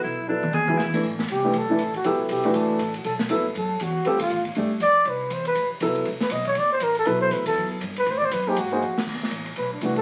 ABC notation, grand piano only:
X:1
M:4/4
L:1/8
Q:"Swing" 1/4=239
K:Ador
V:1 name="Grand piano"
[F,B,EA] z [F,B,EA] z2 [F,B,E^G] z [E,A,DA] | z3 [E,A,DG] z [E,A,DE] z2 | [F,B,EA]3 [E,A,DF]3 z2 | z2 [F,B,EA] z4 z |
[G,C=FA] z3 [A,DGd] z3 | z6 [F,B,EA]2 | z8 | [F,B,EA]4- [F,B,EA] z3 |
z3 [_B,_E_Ac] z [B,EAc] z2 | z6 [E,A,DF] z |]